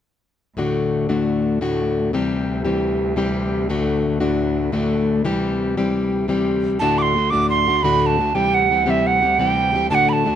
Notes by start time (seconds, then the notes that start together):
0.57 D2 A2 D3 A3 D4 F#4
1.09 D2 A2 D3 A3 D4 F#4
1.61 D2 A2 D3 A3 D4 F#4
2.13 C3 E3 G3 C4 G4
2.64 C3 E3 G3 C4 G4
3.16 C3 E3 G3 C4 G4
3.69 D2 A2 D3 A3 D4 F#4
4.20 D2 A2 D3 A3 D4 F#4
4.72 D2 A2 D3 A3 D4 F#4
5.24 C3 E3 G3 C4 G4
5.77 C3 E3 G3 C4 G4
6.28 C3 E3 G3 C4 G4
6.79 D2 A2 D3 A3 D4 F#4 A5
6.98 C6 D6
7.16 D3 A3 D4 F#4
7.30 D2 A2 D3 A3 D4 F#4 D6
7.50 C6
7.67 D3 A3 D4 F#4
7.83 D2 A2 D3 A3 D4 F#4 B5
8.02 B5
8.06 A5
8.19 D3 A3 D4 F#4
8.35 C3 E3 G3 C4 G4 G5
8.54 F#5
8.70 E3 G3 C4 G4
8.86 C3 E3 G3 C4 G4 F#5
8.90 E5
9.07 F#5
9.23 G3 C4 G4
9.39 C3 E3 G3 C4 G4 G5
9.73 E3 G3 C4 G4
9.90 D2 A2 D3 A3 D4 F#4 A5
9.94 F#5
10.09 A5 B5
10.25 D3 A3 D4 F#4